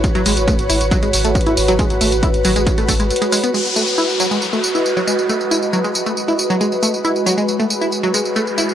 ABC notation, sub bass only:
X:1
M:4/4
L:1/16
Q:1/4=137
K:G#phr
V:1 name="Sub bass" clef=bass
z G,,, G,,, G,,, z G,,, G,,, G,,, z G,,, G,,, G,,, z G,,, G,,, G,,, | z G,,, G,,, G,,, z G,,, G,,, G,,, z G,,, G,,, G,,, z4 | z16 | z16 |
z16 |]